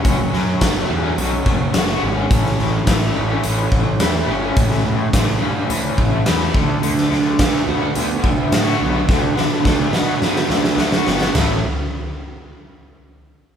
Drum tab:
CC |----------------|----------------|----------------|----------------|
HH |x---x---x---x---|x---x---x---x---|x---x---x---x---|x---x---x---x---|
SD |--o-o-------o---|-oo-o-------o---|-o--o-------o---|-oo-o-------o---|
FT |----------------|----------------|----------------|----------------|
BD |o---o-----o-----|o---o-----o-----|o---o-----o---o-|----o-----o-----|

CC |----------------|x---------------|
HH |----------------|----------------|
SD |o-o-o-o-oooooooo|o---------------|
FT |----------------|o---------------|
BD |o---o-----------|----------------|